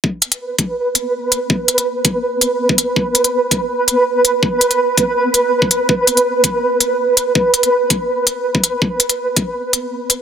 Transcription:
0, 0, Header, 1, 3, 480
1, 0, Start_track
1, 0, Tempo, 365854
1, 50, Time_signature, 4, 2, 24, 8
1, 13406, End_track
2, 0, Start_track
2, 0, Title_t, "Synth texture"
2, 0, Program_c, 0, 99
2, 47, Note_on_c, 0, 71, 86
2, 13406, Note_off_c, 0, 71, 0
2, 13406, End_track
3, 0, Start_track
3, 0, Title_t, "Drums"
3, 49, Note_on_c, 9, 36, 110
3, 180, Note_off_c, 9, 36, 0
3, 288, Note_on_c, 9, 42, 73
3, 416, Note_off_c, 9, 42, 0
3, 416, Note_on_c, 9, 42, 34
3, 547, Note_off_c, 9, 42, 0
3, 768, Note_on_c, 9, 36, 92
3, 768, Note_on_c, 9, 42, 58
3, 899, Note_off_c, 9, 36, 0
3, 899, Note_off_c, 9, 42, 0
3, 1247, Note_on_c, 9, 42, 72
3, 1379, Note_off_c, 9, 42, 0
3, 1729, Note_on_c, 9, 42, 57
3, 1860, Note_off_c, 9, 42, 0
3, 1967, Note_on_c, 9, 36, 115
3, 2098, Note_off_c, 9, 36, 0
3, 2207, Note_on_c, 9, 42, 73
3, 2335, Note_off_c, 9, 42, 0
3, 2335, Note_on_c, 9, 42, 34
3, 2466, Note_off_c, 9, 42, 0
3, 2685, Note_on_c, 9, 42, 62
3, 2687, Note_on_c, 9, 36, 98
3, 2816, Note_off_c, 9, 42, 0
3, 2818, Note_off_c, 9, 36, 0
3, 3167, Note_on_c, 9, 42, 74
3, 3298, Note_off_c, 9, 42, 0
3, 3533, Note_on_c, 9, 36, 102
3, 3649, Note_on_c, 9, 42, 62
3, 3665, Note_off_c, 9, 36, 0
3, 3780, Note_off_c, 9, 42, 0
3, 3888, Note_on_c, 9, 36, 116
3, 4019, Note_off_c, 9, 36, 0
3, 4131, Note_on_c, 9, 42, 69
3, 4256, Note_off_c, 9, 42, 0
3, 4256, Note_on_c, 9, 42, 35
3, 4387, Note_off_c, 9, 42, 0
3, 4609, Note_on_c, 9, 36, 100
3, 4611, Note_on_c, 9, 42, 60
3, 4740, Note_off_c, 9, 36, 0
3, 4742, Note_off_c, 9, 42, 0
3, 5088, Note_on_c, 9, 42, 72
3, 5220, Note_off_c, 9, 42, 0
3, 5572, Note_on_c, 9, 42, 59
3, 5703, Note_off_c, 9, 42, 0
3, 5808, Note_on_c, 9, 36, 118
3, 5939, Note_off_c, 9, 36, 0
3, 6050, Note_on_c, 9, 42, 71
3, 6176, Note_off_c, 9, 42, 0
3, 6176, Note_on_c, 9, 42, 33
3, 6307, Note_off_c, 9, 42, 0
3, 6527, Note_on_c, 9, 36, 102
3, 6530, Note_on_c, 9, 42, 55
3, 6659, Note_off_c, 9, 36, 0
3, 6661, Note_off_c, 9, 42, 0
3, 7007, Note_on_c, 9, 42, 69
3, 7138, Note_off_c, 9, 42, 0
3, 7373, Note_on_c, 9, 36, 96
3, 7490, Note_on_c, 9, 42, 55
3, 7504, Note_off_c, 9, 36, 0
3, 7621, Note_off_c, 9, 42, 0
3, 7727, Note_on_c, 9, 36, 106
3, 7859, Note_off_c, 9, 36, 0
3, 7969, Note_on_c, 9, 42, 69
3, 8097, Note_off_c, 9, 42, 0
3, 8097, Note_on_c, 9, 42, 33
3, 8229, Note_off_c, 9, 42, 0
3, 8447, Note_on_c, 9, 36, 96
3, 8447, Note_on_c, 9, 42, 55
3, 8578, Note_off_c, 9, 42, 0
3, 8579, Note_off_c, 9, 36, 0
3, 8928, Note_on_c, 9, 42, 69
3, 9059, Note_off_c, 9, 42, 0
3, 9408, Note_on_c, 9, 42, 56
3, 9539, Note_off_c, 9, 42, 0
3, 9647, Note_on_c, 9, 36, 110
3, 9778, Note_off_c, 9, 36, 0
3, 9888, Note_on_c, 9, 42, 71
3, 10013, Note_off_c, 9, 42, 0
3, 10013, Note_on_c, 9, 42, 33
3, 10145, Note_off_c, 9, 42, 0
3, 10367, Note_on_c, 9, 42, 56
3, 10368, Note_on_c, 9, 36, 96
3, 10498, Note_off_c, 9, 42, 0
3, 10499, Note_off_c, 9, 36, 0
3, 10847, Note_on_c, 9, 42, 72
3, 10978, Note_off_c, 9, 42, 0
3, 11214, Note_on_c, 9, 36, 90
3, 11330, Note_on_c, 9, 42, 54
3, 11345, Note_off_c, 9, 36, 0
3, 11461, Note_off_c, 9, 42, 0
3, 11568, Note_on_c, 9, 36, 107
3, 11700, Note_off_c, 9, 36, 0
3, 11806, Note_on_c, 9, 42, 68
3, 11932, Note_off_c, 9, 42, 0
3, 11932, Note_on_c, 9, 42, 34
3, 12063, Note_off_c, 9, 42, 0
3, 12287, Note_on_c, 9, 42, 61
3, 12288, Note_on_c, 9, 36, 95
3, 12418, Note_off_c, 9, 42, 0
3, 12419, Note_off_c, 9, 36, 0
3, 12768, Note_on_c, 9, 42, 74
3, 12900, Note_off_c, 9, 42, 0
3, 13249, Note_on_c, 9, 42, 58
3, 13380, Note_off_c, 9, 42, 0
3, 13406, End_track
0, 0, End_of_file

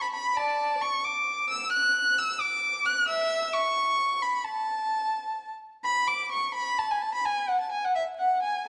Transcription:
0, 0, Header, 1, 2, 480
1, 0, Start_track
1, 0, Key_signature, 3, "major"
1, 0, Tempo, 453515
1, 389, Time_signature, 12, 3, 24, 8
1, 4710, Tempo, 462963
1, 7590, Tempo, 480769
1, 9040, End_track
2, 0, Start_track
2, 0, Title_t, "Violin"
2, 0, Program_c, 0, 40
2, 19, Note_on_c, 0, 83, 68
2, 69, Note_off_c, 0, 83, 0
2, 143, Note_on_c, 0, 83, 78
2, 381, Note_off_c, 0, 83, 0
2, 385, Note_on_c, 0, 81, 71
2, 387, Note_on_c, 0, 74, 66
2, 832, Note_off_c, 0, 74, 0
2, 860, Note_on_c, 0, 85, 81
2, 864, Note_off_c, 0, 81, 0
2, 1101, Note_on_c, 0, 86, 74
2, 1102, Note_off_c, 0, 85, 0
2, 1580, Note_off_c, 0, 86, 0
2, 1582, Note_on_c, 0, 88, 82
2, 1818, Note_off_c, 0, 88, 0
2, 1820, Note_on_c, 0, 90, 82
2, 2295, Note_off_c, 0, 90, 0
2, 2310, Note_on_c, 0, 88, 87
2, 2540, Note_on_c, 0, 86, 88
2, 2549, Note_off_c, 0, 88, 0
2, 3019, Note_on_c, 0, 90, 87
2, 3023, Note_off_c, 0, 86, 0
2, 3259, Note_on_c, 0, 76, 69
2, 3259, Note_on_c, 0, 88, 87
2, 3263, Note_off_c, 0, 90, 0
2, 3708, Note_off_c, 0, 76, 0
2, 3732, Note_off_c, 0, 88, 0
2, 3741, Note_on_c, 0, 85, 85
2, 4464, Note_on_c, 0, 83, 69
2, 4467, Note_off_c, 0, 85, 0
2, 4706, Note_on_c, 0, 81, 74
2, 4709, Note_off_c, 0, 83, 0
2, 5791, Note_off_c, 0, 81, 0
2, 6152, Note_on_c, 0, 83, 77
2, 6374, Note_off_c, 0, 83, 0
2, 6393, Note_on_c, 0, 86, 77
2, 6631, Note_off_c, 0, 86, 0
2, 6645, Note_on_c, 0, 85, 67
2, 6871, Note_off_c, 0, 85, 0
2, 6882, Note_on_c, 0, 83, 80
2, 7110, Note_off_c, 0, 83, 0
2, 7133, Note_on_c, 0, 81, 71
2, 7240, Note_off_c, 0, 81, 0
2, 7255, Note_on_c, 0, 80, 61
2, 7362, Note_off_c, 0, 80, 0
2, 7370, Note_on_c, 0, 81, 69
2, 7480, Note_off_c, 0, 81, 0
2, 7499, Note_on_c, 0, 83, 67
2, 7603, Note_off_c, 0, 83, 0
2, 7613, Note_on_c, 0, 80, 79
2, 7837, Note_off_c, 0, 80, 0
2, 7843, Note_on_c, 0, 78, 54
2, 7953, Note_off_c, 0, 78, 0
2, 7965, Note_on_c, 0, 81, 55
2, 8071, Note_off_c, 0, 81, 0
2, 8073, Note_on_c, 0, 80, 58
2, 8184, Note_off_c, 0, 80, 0
2, 8205, Note_on_c, 0, 78, 60
2, 8311, Note_on_c, 0, 76, 73
2, 8312, Note_off_c, 0, 78, 0
2, 8391, Note_off_c, 0, 76, 0
2, 8545, Note_on_c, 0, 78, 64
2, 8781, Note_off_c, 0, 78, 0
2, 8784, Note_on_c, 0, 80, 62
2, 9022, Note_off_c, 0, 80, 0
2, 9040, End_track
0, 0, End_of_file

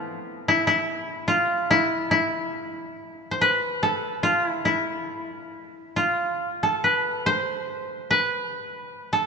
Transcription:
0, 0, Header, 1, 2, 480
1, 0, Start_track
1, 0, Tempo, 825309
1, 55, Time_signature, 4, 2, 24, 8
1, 2457, Tempo, 865801
1, 4377, Tempo, 832178
1, 5287, End_track
2, 0, Start_track
2, 0, Title_t, "Koto"
2, 0, Program_c, 0, 107
2, 0, Note_on_c, 0, 57, 32
2, 0, Note_on_c, 0, 59, 33
2, 0, Note_on_c, 0, 60, 36
2, 0, Note_on_c, 0, 64, 37
2, 0, Note_on_c, 0, 65, 49
2, 279, Note_off_c, 0, 64, 0
2, 281, Note_on_c, 0, 64, 71
2, 316, Note_off_c, 0, 65, 0
2, 388, Note_off_c, 0, 64, 0
2, 390, Note_on_c, 0, 64, 67
2, 743, Note_on_c, 0, 65, 67
2, 778, Note_off_c, 0, 64, 0
2, 992, Note_on_c, 0, 64, 78
2, 1027, Note_off_c, 0, 65, 0
2, 1056, Note_off_c, 0, 60, 0
2, 1082, Note_off_c, 0, 59, 0
2, 1179, Note_off_c, 0, 57, 0
2, 1225, Note_off_c, 0, 64, 0
2, 1227, Note_on_c, 0, 64, 64
2, 1927, Note_on_c, 0, 72, 52
2, 1986, Note_on_c, 0, 71, 63
2, 2020, Note_off_c, 0, 72, 0
2, 2226, Note_on_c, 0, 69, 69
2, 2461, Note_on_c, 0, 65, 65
2, 2494, Note_off_c, 0, 64, 0
2, 2588, Note_off_c, 0, 65, 0
2, 2588, Note_on_c, 0, 64, 65
2, 2694, Note_off_c, 0, 64, 0
2, 2694, Note_on_c, 0, 64, 57
2, 2992, Note_off_c, 0, 71, 0
2, 3292, Note_off_c, 0, 69, 0
2, 3421, Note_on_c, 0, 65, 57
2, 3454, Note_off_c, 0, 64, 0
2, 3791, Note_on_c, 0, 69, 59
2, 3906, Note_on_c, 0, 71, 56
2, 4141, Note_on_c, 0, 72, 77
2, 4175, Note_off_c, 0, 71, 0
2, 4618, Note_on_c, 0, 71, 68
2, 4644, Note_off_c, 0, 65, 0
2, 4653, Note_off_c, 0, 72, 0
2, 4865, Note_off_c, 0, 69, 0
2, 5207, Note_on_c, 0, 69, 58
2, 5287, Note_off_c, 0, 69, 0
2, 5287, Note_off_c, 0, 71, 0
2, 5287, End_track
0, 0, End_of_file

